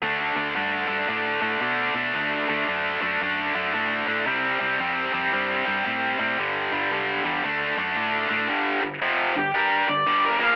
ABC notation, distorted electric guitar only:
X:1
M:4/4
L:1/8
Q:"Swing" 1/4=113
K:Ddor
V:1 name="Distorted electric guitar" clef=bass
[D,A,D] [D,A,D] [D,A,D] [D,A,D] [D,A,D] [D,A,D] [D,A,D] [D,A,D] | [D,A,D] [D,A,D] [D,A,D] [D,A,D] [D,A,D] [D,A,D] [D,A,D] [D,A,D] | [C,G,C] [C,G,C] [C,G,C] [C,G,C] [C,G,C] [C,G,C] [C,G,C] [C,G,C] | [G,,D,G,] [G,,D,G,] [G,,D,G,] [G,,D,G,] [D,A,D] [D,A,D] [D,A,D] [D,A,D] |
[G,,D,G,] [G,,D,] [F,,C,F,] [G,,D,] [G,DG] [G,,D,] [G,,D,G,] [_B,,F,_B,] |]